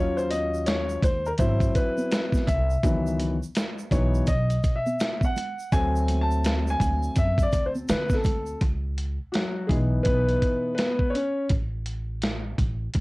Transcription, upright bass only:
0.00 0.99 D#2 medium
1.02 1.30 D#2 loud
1.39 1.66 G#1 medium
2.48 2.75 C2 loud
2.84 3.38 C#2 loud
3.91 4.19 B1 loud
4.28 4.55 B1 medium
5.72 6.77 D2 loud
6.80 7.08 D2 medium
7.17 7.44 F#2 loud
7.53 7.80 D2 medium
7.90 8.17 D3 loud
8.25 8.53 D2 medium
8.62 9.16 C#2 loud
9.69 9.97 B1 medium
10.06 10.33 B1 medium
11.50 12.55 A1 medium
12.58 12.86 A1 medium
12.95 13.01 D2 medium

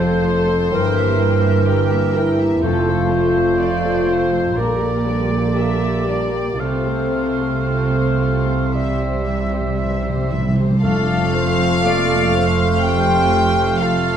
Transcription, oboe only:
0.00 0.68 C5 medium
0.73 2.33 A#4 medium
2.62 4.58 C5 medium
4.56 6.61 D5 soft
6.59 8.73 F5 soft
8.73 10.47 E5 soft
10.83 13.77 F5 medium
13.81 14.17 F5 medium

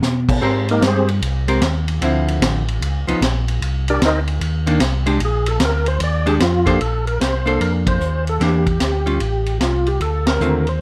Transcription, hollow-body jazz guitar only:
0.41 1.03 G#3 medium
0.41 1.03 C4 medium
0.41 1.03 G4 medium
0.41 1.03 A#4 medium
1.48 1.60 G#3 medium
1.48 1.61 C4 medium
1.48 1.61 G4 medium
1.48 1.61 A#4 medium
2.01 2.62 D3 medium
2.01 2.63 F3 medium
2.01 2.63 C4 medium
2.01 2.63 E4 medium
3.07 3.20 F3 medium
3.07 3.20 B3 medium
3.07 3.21 D#4 medium
4.67 4.79 D#3 medium
4.67 4.80 A#3 medium
4.67 4.80 D4 medium
5.06 5.19 G#3 medium
5.06 5.19 D4 medium
5.06 5.19 G4 medium
6.26 6.39 G#3 medium
6.26 6.39 D4 medium
6.26 6.39 G4 medium
6.66 6.79 A#3 medium
6.66 6.79 D4 medium
6.66 6.79 A4 medium
6.66 6.79 C5 medium
7.46 7.97 A#3 medium
7.46 7.97 D4 medium
7.46 7.98 A4 medium
7.46 7.98 C5 medium
8.40 8.64 E3 medium
8.40 8.64 A#3 medium
8.40 8.64 D4 medium
8.40 8.64 G4 medium
9.06 9.19 G3 medium
9.06 9.19 C#4 medium
9.06 9.19 F4 medium
10.41 10.64 D3 medium
10.41 10.65 A3 medium
10.41 10.65 C4 medium
10.41 10.65 F4 medium

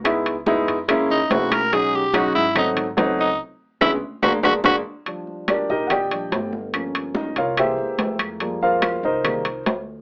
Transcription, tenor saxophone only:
1.11 1.33 D#4 medium
1.32 1.54 F#4 medium
1.53 1.75 A#4 medium
1.74 1.98 G#4 medium
1.96 2.17 G4 medium
2.16 2.35 F#4 medium
2.36 2.55 E4 loud
2.58 2.70 D#4 medium
3.21 3.39 D#4 medium
3.82 3.92 E4 medium
4.23 4.33 F#4 medium
4.45 4.55 F#4 medium
4.66 4.76 F#4 loud

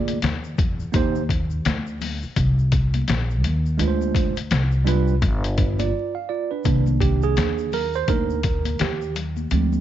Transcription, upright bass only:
0.00 0.19 D2 loud
0.22 0.56 D#2 medium
0.58 0.92 E2 medium
0.94 1.62 D#2 loud
1.65 2.20 D2 medium
2.23 muted upright bass stroke soft
2.36 3.04 C2 loud
3.08 3.44 A#1 medium
3.44 3.78 D#2 medium
3.79 4.47 D2 medium
4.51 5.19 C2 loud
5.22 5.90 G1 loud
6.65 7.33 C2 loud
7.37 8.05 D#2 medium
8.08 8.76 D2 loud
8.80 9.48 D#2 medium
9.51 9.80 D2 loud

